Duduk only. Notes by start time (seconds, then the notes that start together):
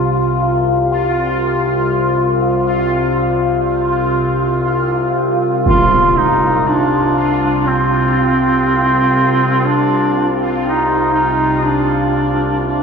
5.67 F4
6.17 D#4
6.68 D4
7.68 C4
9.66 D4
10.66 D#4
11.13 D#4
11.65 D4
12.67 D4